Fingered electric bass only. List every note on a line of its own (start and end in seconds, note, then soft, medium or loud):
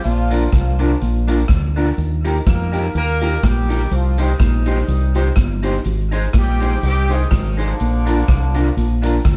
0.05 0.46 A#1 loud
0.53 0.94 C2 medium
1.02 1.43 A#1 loud
1.49 1.90 D2 medium
1.98 2.39 D#2 medium
2.46 2.88 F2 medium
2.95 3.36 D#2 loud
3.44 3.85 A#1 medium
3.91 4.33 C2 loud
4.40 4.81 A#1 medium
4.88 5.30 C2 loud
5.36 5.78 G1 medium
5.85 6.27 G#1 loud
6.34 6.75 A#1 medium
6.83 7.24 C2 loud
7.32 7.73 G#1 loud
7.80 8.21 A#1 loud
8.28 8.70 C2 medium
8.77 9.18 A#1 loud
9.25 9.37 D2 medium